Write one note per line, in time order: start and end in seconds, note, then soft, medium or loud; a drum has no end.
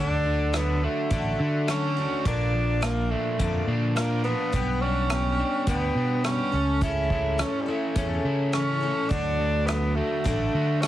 0.00 0.85 D2 medium
0.00 0.54 D3 medium
0.00 0.52 F#3 medium
0.00 0.53 A3 medium
0.00 0.54 D4 medium
0.00 0.58 D4 loud
0.00 0.55 F#4 medium
0.26 0.83 D4 medium
0.53 1.10 D3 soft
0.53 1.10 F#3 medium
0.53 1.10 A3 soft
0.53 0.86 B3 medium
0.53 1.12 D4 medium
0.53 1.11 F#4 soft
0.53 cross-stick medium
0.53 closed hi-hat medium
0.84 1.69 A3 medium
0.84 1.40 D4 medium
1.10 1.33 A1 medium
1.10 1.68 D3 medium
1.10 2.25 D3 medium
1.10 1.67 F#3 medium
1.10 1.68 A3 medium
1.10 1.70 D4 medium
1.10 1.69 F#4 medium
1.10 kick medium
1.10 closed hi-hat medium
1.40 2.06 D3 medium
1.40 3.11 D4 medium
1.68 1.96 F#3 medium
1.68 1.97 A3 medium
1.68 2.28 C#4 medium
1.68 1.97 D4 medium
1.68 1.95 F#4 soft
1.68 2.25 A4 medium
1.68 cross-stick medium
1.68 closed hi-hat medium
1.96 2.26 A3 soft
1.96 2.26 D4 medium
1.96 2.25 F#4 medium
1.96 2.25 F#4 soft
2.25 3.13 A#1 medium
2.25 3.67 A#2 medium
2.25 2.82 A#2 medium
2.25 2.82 D3 medium
2.25 2.80 F3 medium
2.25 2.81 A#3 medium
2.25 2.82 D4 medium
2.25 2.85 D4 medium
2.25 2.83 A#4 medium
2.25 kick medium
2.25 closed hi-hat medium
2.54 3.96 F3 medium
2.81 3.38 F3 soft
2.81 3.38 A#3 medium
2.81 3.39 A#3 medium
2.81 3.13 A#3 medium
2.81 3.39 D4 medium
2.81 3.40 A#4 medium
2.81 cross-stick loud
2.81 closed hi-hat medium
3.11 3.69 A3 medium
3.11 3.67 D4 medium
3.39 3.61 F2 medium
3.39 3.96 A#2 medium
3.39 3.96 D3 medium
3.39 3.94 F3 medium
3.39 4.53 A#3 medium
3.39 3.97 D4 medium
3.39 kick medium
3.39 closed hi-hat medium
3.67 4.33 A#2 medium
3.67 4.53 D4 medium
3.96 4.24 F3 medium
3.96 4.22 A#3 medium
3.96 4.25 A#3 medium
3.96 4.23 D4 medium
3.96 4.53 A#4 medium
3.96 4.23 A#4 medium
3.96 cross-stick medium
3.96 closed hi-hat soft
4.24 4.53 F3 soft
4.24 4.53 A#3 soft
4.24 4.83 B3 medium
4.24 4.53 D4 soft
4.24 4.53 F4 soft
4.24 4.53 A#4 medium
4.52 5.41 B1 medium
4.52 5.10 B2 medium
4.52 5.08 G3 medium
4.52 5.10 B3 medium
4.52 5.10 D4 medium
4.52 5.11 G4 medium
4.52 kick medium
4.52 closed hi-hat soft
4.81 5.67 C#4 medium
4.81 5.38 D4 medium
5.10 5.67 G3 soft
5.10 5.67 B3 medium
5.10 5.68 G4 medium
5.10 cross-stick loud
5.10 closed hi-hat medium
5.39 5.96 D4 medium
5.67 5.89 D2 medium
5.67 6.24 B2 medium
5.67 6.23 G3 medium
5.67 6.21 B3 medium
5.67 6.24 B3 medium
5.67 6.53 B3 medium
5.67 6.25 D4 medium
5.67 6.25 G4 medium
5.67 kick medium
5.67 closed hi-hat medium
5.95 6.39 B2 medium
5.95 6.53 D4 medium
6.24 6.53 G3 soft
6.24 6.53 B3 medium
6.24 6.84 C#4 medium
6.24 6.53 D4 soft
6.24 6.52 G4 medium
6.24 6.53 B4 medium
6.24 cross-stick loud
6.24 closed hi-hat soft
6.52 7.41 C#2 medium
6.52 6.81 A3 soft
6.52 6.81 C#4 soft
6.52 6.82 C#4 soft
6.52 6.81 A4 medium
6.81 7.38 C#3 medium
6.81 7.37 E3 medium
6.81 7.38 A3 medium
6.81 7.39 C#4 medium
6.81 7.42 E4 loud
6.81 7.41 A4 medium
6.81 kick medium
6.81 closed hi-hat soft
7.10 7.67 E4 medium
7.10 kick medium
7.38 7.67 E3 soft
7.38 7.96 C#4 medium
7.38 7.67 C#4 medium
7.38 7.62 C#4 medium
7.38 7.65 A4 medium
7.38 cross-stick loud
7.38 closed hi-hat medium
7.61 7.70 G3 soft
7.66 8.27 A3 medium
7.66 7.95 A3 soft
7.66 7.96 C#4 soft
7.66 8.25 E4 medium
7.66 7.95 A4 soft
7.96 8.18 E2 medium
7.96 8.53 C#3 medium
7.96 8.51 E3 medium
7.96 8.52 A3 medium
7.96 9.11 C#4 medium
7.96 8.53 C#4 medium
7.96 8.54 A4 medium
7.96 kick loud
7.96 closed hi-hat medium
8.24 8.91 C#3 medium
8.24 9.11 E4 medium
8.52 8.81 E3 soft
8.52 8.82 A3 medium
8.52 9.11 C#4 medium
8.52 8.81 C#4 medium
8.52 8.80 A4 soft
8.52 9.11 C#5 medium
8.52 cross-stick medium
8.52 closed hi-hat soft
8.81 9.09 A3 soft
8.81 9.11 C#4 soft
8.81 9.10 A4 soft
8.81 9.11 A4 soft
9.09 10.00 D2 medium
9.09 9.67 D3 medium
9.09 10.54 D3 medium
9.09 9.66 F#3 medium
9.09 9.67 A3 medium
9.09 9.68 D4 loud
9.09 9.68 D4 medium
9.09 9.68 F#4 medium
9.09 kick medium
9.09 closed hi-hat soft
9.40 10.83 A3 medium
9.66 10.24 F#3 soft
9.66 10.24 A3 medium
9.66 9.96 B3 medium
9.66 10.25 D4 soft
9.66 10.25 D4 medium
9.66 10.25 F#4 medium
9.66 cross-stick medium
9.66 closed hi-hat medium
9.95 10.83 A3 medium
9.95 10.54 F#4 medium
10.24 10.48 A1 medium
10.24 10.82 D3 medium
10.24 10.81 F#3 medium
10.24 10.82 A3 medium
10.24 10.88 D4 medium
10.24 10.84 D4 medium
10.24 10.83 F#4 medium
10.24 kick loud
10.24 closed hi-hat medium
10.54 10.88 D3 medium
10.54 10.88 F#4 medium
10.81 10.88 F#3 medium
10.81 10.88 A3 soft
10.81 10.88 C#4 loud
10.81 10.88 D4 medium
10.81 10.88 D5 medium
10.81 cross-stick loud
10.81 closed hi-hat medium